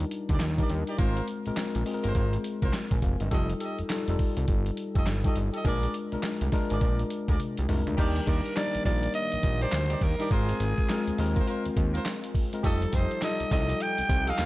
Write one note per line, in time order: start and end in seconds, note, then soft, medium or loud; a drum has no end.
0.00 0.59 G3 medium
0.00 0.59 D4 medium
0.00 0.60 D#4 medium
0.00 0.42 F4 loud
0.00 0.60 A#4 loud
0.00 closed hi-hat soft
0.11 closed hi-hat medium
0.29 0.38 D2 loud
0.29 0.40 D#4 medium
0.29 0.40 G4 medium
0.29 0.41 D5 medium
0.29 kick loud
0.29 closed hi-hat medium
0.40 0.64 D#2 medium
0.40 snare loud
0.40 clap medium
0.40 closed hi-hat medium
0.58 0.95 G3 medium
0.58 0.95 D4 medium
0.58 0.69 D#4 medium
0.58 0.95 D#4 medium
0.58 0.69 G4 medium
0.58 0.95 A#4 medium
0.58 0.70 D5 medium
0.58 kick loud
0.58 closed hi-hat medium
0.70 0.84 D#2 medium
0.70 closed hi-hat medium
0.87 0.99 D#4 medium
0.87 0.99 G4 medium
0.87 0.99 D5 medium
0.87 closed hi-hat soft
0.98 1.21 G#1 loud
0.98 1.39 G#3 medium
0.98 1.40 C4 medium
0.98 1.26 F4 medium
0.98 1.40 F4 medium
0.98 1.26 A#4 medium
0.98 1.40 A#4 medium
0.98 1.26 C5 loud
0.98 kick loud
0.98 closed hi-hat medium
1.17 closed hi-hat soft
1.28 closed hi-hat medium
1.46 1.51 A#1 soft
1.46 1.82 G#3 medium
1.46 1.82 C4 medium
1.46 1.83 F4 medium
1.46 1.83 A#4 medium
1.46 closed hi-hat soft
1.57 snare loud
1.57 clap medium
1.57 closed hi-hat medium
1.75 1.84 A#1 medium
1.75 closed hi-hat soft
1.86 2.92 G#3 medium
1.86 2.92 C4 medium
1.86 2.92 F4 medium
1.86 1.95 G#4 medium
1.86 open hi-hat medium
1.94 2.96 A#4 loud
2.03 2.13 G1 medium
2.03 2.14 F4 medium
2.03 2.14 A#4 medium
2.03 2.14 C5 medium
2.03 closed hi-hat medium
2.15 2.38 G#1 loud
2.15 2.33 F4 medium
2.15 2.33 A#4 medium
2.15 2.33 C5 medium
2.15 kick loud
2.15 closed hi-hat medium
2.33 closed hi-hat soft
2.44 closed hi-hat medium
2.62 2.71 C2 medium
2.62 2.73 F4 medium
2.62 2.73 A#4 medium
2.62 2.73 C5 medium
2.62 kick medium
2.62 closed hi-hat medium
2.73 snare loud
2.73 clap medium
2.73 closed hi-hat medium
2.91 3.00 A#1 medium
2.91 3.02 G#5 medium
2.91 kick loud
2.91 closed hi-hat medium
3.02 3.16 F1 medium
3.02 3.20 F5 medium
3.02 kick loud
3.02 closed hi-hat medium
3.20 3.29 G1 medium
3.20 3.48 D#5 medium
3.20 closed hi-hat soft
3.31 3.54 F1 loud
3.31 3.85 G3 medium
3.31 3.85 D#4 medium
3.31 3.85 F4 medium
3.31 3.49 G4 medium
3.31 3.49 A4 medium
3.31 3.85 A4 medium
3.31 3.49 D#5 loud
3.31 kick loud
3.31 closed hi-hat medium
3.50 closed hi-hat soft
3.60 3.79 G4 medium
3.60 3.79 A4 medium
3.60 3.79 D#5 medium
3.60 closed hi-hat medium
3.79 3.83 F1 soft
3.79 closed hi-hat soft
3.89 4.06 G3 medium
3.89 4.06 D#4 medium
3.89 4.06 F4 medium
3.89 4.06 A4 loud
3.89 snare loud
3.89 clap medium
3.89 closed hi-hat medium
4.08 4.17 F1 medium
4.08 5.07 G3 medium
4.08 5.07 D#4 medium
4.08 5.08 F4 medium
4.08 5.08 A4 medium
4.08 closed hi-hat soft
4.19 kick medium
4.19 open hi-hat medium
4.37 4.46 C2 medium
4.37 closed hi-hat medium
4.48 4.71 G1 loud
4.48 kick loud
4.48 closed hi-hat medium
4.66 closed hi-hat soft
4.77 closed hi-hat medium
4.95 5.04 F1 medium
4.95 5.06 G4 medium
4.95 5.07 A4 medium
4.95 5.07 D#5 medium
4.95 kick loud
4.95 closed hi-hat medium
5.06 5.29 G1 medium
5.06 snare loud
5.06 clap medium
5.06 closed hi-hat medium
5.24 5.61 G3 medium
5.24 5.61 D#4 medium
5.24 5.61 F4 medium
5.24 5.36 G4 medium
5.24 5.36 A4 medium
5.24 5.61 A4 medium
5.24 5.36 D#5 medium
5.24 kick loud
5.24 closed hi-hat medium
5.36 5.50 G1 medium
5.36 closed hi-hat medium
5.53 5.65 G4 medium
5.53 5.65 A4 medium
5.53 5.65 D#5 medium
5.53 closed hi-hat soft
5.64 5.87 A#1 loud
5.64 6.05 G#3 medium
5.64 6.05 D4 medium
5.64 6.06 F4 medium
5.64 5.92 G#4 medium
5.64 5.92 A#4 medium
5.64 6.06 A#4 medium
5.64 5.92 D5 loud
5.64 kick loud
5.64 closed hi-hat medium
5.83 closed hi-hat soft
5.94 closed hi-hat medium
6.12 6.17 C2 medium
6.12 6.48 G#3 medium
6.12 6.48 D4 medium
6.12 6.49 F4 medium
6.12 6.49 A#4 medium
6.12 closed hi-hat soft
6.23 snare loud
6.23 clap medium
6.23 closed hi-hat medium
6.41 6.50 C2 medium
6.41 closed hi-hat soft
6.52 7.58 G#3 loud
6.52 7.58 D4 medium
6.52 7.58 F4 medium
6.52 7.59 A#4 loud
6.52 kick medium
6.52 snare medium
6.52 open hi-hat medium
6.69 6.79 G#1 medium
6.69 6.79 G#4 medium
6.69 6.80 A#4 medium
6.69 6.80 D5 medium
6.69 closed hi-hat medium
6.81 7.04 A#1 loud
6.81 6.99 G#4 medium
6.81 6.99 A#4 medium
6.81 6.99 D5 medium
6.81 kick loud
6.81 closed hi-hat medium
6.99 closed hi-hat soft
7.10 closed hi-hat medium
7.28 7.37 D2 medium
7.28 7.39 G#4 medium
7.28 7.39 A#4 medium
7.28 7.39 D5 medium
7.28 kick medium
7.28 closed hi-hat medium
7.39 closed hi-hat medium
7.39 high tom medium
7.58 7.67 C2 medium
7.58 closed hi-hat medium
7.69 7.83 C2 medium
7.69 7.95 G#3 medium
7.69 7.95 D4 medium
7.69 7.95 F4 medium
7.69 7.96 A#4 loud
7.69 mid tom medium
7.69 open hi-hat medium
7.87 7.96 D2 loud
7.87 closed hi-hat soft
7.87 floor tom medium
7.97 8.21 D#2 loud
7.97 10.28 D#3 medium
7.97 8.51 G3 medium
7.97 10.28 A#3 medium
7.97 8.51 D4 medium
7.97 8.15 D#4 medium
7.97 8.51 D#4 medium
7.97 8.15 G4 medium
7.97 10.28 G4 medium
7.97 8.30 G4 medium
7.97 8.51 A#4 medium
7.97 8.15 D5 loud
7.97 kick loud
7.97 closed hi-hat medium
7.97 crash medium
8.16 closed hi-hat soft
8.26 8.41 D#2 loud
8.26 8.44 D#4 medium
8.26 8.44 G4 medium
8.26 8.58 A#4 medium
8.26 8.44 D5 medium
8.26 kick loud
8.26 closed hi-hat medium
8.46 closed hi-hat soft
8.56 8.82 G3 medium
8.56 8.83 D4 medium
8.56 8.83 D#4 medium
8.56 8.83 A#4 medium
8.56 8.85 D5 loud
8.56 snare loud
8.56 clap medium
8.56 closed hi-hat medium
8.75 8.79 A#1 soft
8.75 closed hi-hat soft
8.85 9.08 A#1 medium
8.85 9.91 G3 medium
8.85 9.91 A#3 medium
8.85 9.91 D#4 medium
8.85 9.91 A#4 medium
8.85 9.13 D5 loud
8.85 kick loud
8.85 snare medium
8.85 open hi-hat medium
9.03 closed hi-hat medium
9.14 9.58 D#5 loud
9.14 closed hi-hat medium
9.32 9.37 A#1 soft
9.32 closed hi-hat soft
9.43 9.66 A#1 medium
9.43 kick medium
9.43 closed hi-hat medium
9.61 9.72 D#4 medium
9.61 9.72 G4 medium
9.61 10.04 C5 loud
9.61 9.72 D5 medium
9.61 closed hi-hat medium
9.72 9.95 D2 medium
9.72 snare loud
9.72 clap loud
9.72 closed hi-hat medium
9.89 10.01 D#4 medium
9.89 10.01 G4 medium
9.89 10.01 D5 medium
9.89 closed hi-hat medium
10.01 10.16 D#2 medium
10.01 10.31 A#4 medium
10.01 kick medium
10.01 open hi-hat medium
10.19 10.29 G3 medium
10.19 10.30 D4 medium
10.19 10.30 D#4 medium
10.19 10.31 G4 medium
10.19 10.30 A#4 medium
10.19 10.31 D5 medium
10.19 closed hi-hat soft
10.30 10.54 G#1 loud
10.30 12.61 G#3 medium
10.30 10.84 G#3 medium
10.30 12.61 C4 medium
10.30 10.84 C4 medium
10.30 12.61 F4 medium
10.30 10.58 F4 loud
10.30 10.84 F4 medium
10.30 11.44 G#4 medium
10.30 10.58 A#4 medium
10.30 10.84 A#4 medium
10.30 10.58 C5 loud
10.30 kick loud
10.30 closed hi-hat medium
10.49 closed hi-hat medium
10.60 10.74 G#1 loud
10.60 closed hi-hat medium
10.78 kick medium
10.78 closed hi-hat soft
10.89 11.16 G#3 medium
10.89 11.16 C4 medium
10.89 11.16 F4 medium
10.89 11.16 A#4 medium
10.89 snare loud
10.89 clap medium
10.89 closed hi-hat medium
11.07 11.12 D#2 medium
11.07 closed hi-hat soft
11.18 11.41 D#2 loud
11.18 12.24 G#3 medium
11.18 12.24 C4 medium
11.18 12.24 F4 medium
11.18 12.25 A#4 loud
11.18 open hi-hat medium
11.36 11.46 F4 medium
11.36 11.46 A#4 medium
11.36 11.47 C5 medium
11.36 kick medium
11.36 closed hi-hat medium
11.47 11.65 F4 medium
11.47 11.65 A#4 medium
11.47 11.65 C5 medium
11.47 closed hi-hat medium
11.66 11.70 D#2 soft
11.66 closed hi-hat soft
11.77 11.99 D#2 medium
11.77 kick loud
11.77 closed hi-hat medium
11.94 12.05 F4 medium
11.94 12.05 A#4 medium
11.94 12.06 C5 medium
11.94 closed hi-hat medium
12.05 snare loud
12.05 clap loud
12.05 closed hi-hat medium
12.24 closed hi-hat medium
12.35 kick loud
12.35 open hi-hat medium
12.53 12.63 G#3 medium
12.53 12.63 C4 medium
12.53 12.63 F4 medium
12.53 12.63 A#4 medium
12.53 closed hi-hat soft
12.63 12.87 F1 loud
12.63 14.46 F3 medium
12.63 13.17 G3 medium
12.63 14.46 D#4 medium
12.63 13.17 D#4 medium
12.63 13.17 F4 medium
12.63 14.46 G4 medium
12.63 12.81 G4 loud
12.63 14.46 A4 medium
12.63 12.82 A4 medium
12.63 12.96 A4 medium
12.63 13.17 A4 medium
12.63 12.82 D#5 loud
12.63 kick loud
12.63 closed hi-hat medium
12.63 tambourine medium
12.82 closed hi-hat medium
12.92 13.07 F1 loud
12.92 13.10 G4 medium
12.92 13.11 A4 medium
12.92 13.23 C5 medium
12.92 13.11 D#5 medium
12.92 kick loud
12.92 closed hi-hat medium
12.92 tambourine medium
13.11 closed hi-hat soft
13.22 13.49 G3 medium
13.22 13.49 D#4 medium
13.22 13.49 F4 medium
13.22 13.49 A4 loud
13.22 13.50 D#5 loud
13.22 snare loud
13.22 clap medium
13.22 closed hi-hat medium
13.22 tambourine loud
13.40 13.45 C2 medium
13.40 closed hi-hat soft
13.51 13.74 C2 medium
13.51 14.46 G3 medium
13.51 14.46 D#4 medium
13.51 14.46 F4 medium
13.51 14.46 A4 medium
13.51 13.84 D#5 loud
13.51 kick loud
13.51 snare medium
13.51 open hi-hat medium
13.51 tambourine medium
13.69 closed hi-hat medium
13.80 14.31 G5 loud
13.80 closed hi-hat medium
13.98 14.03 C2 soft
13.98 closed hi-hat soft
14.09 14.32 C2 medium
14.09 kick loud
14.09 closed hi-hat medium
14.09 tambourine medium
14.27 14.38 G4 medium
14.27 14.38 A4 medium
14.27 14.39 D#5 medium
14.27 14.46 F5 loud
14.27 closed hi-hat medium
14.38 14.46 D#2 medium
14.38 snare loud
14.38 clap loud
14.38 closed hi-hat medium
14.38 tambourine loud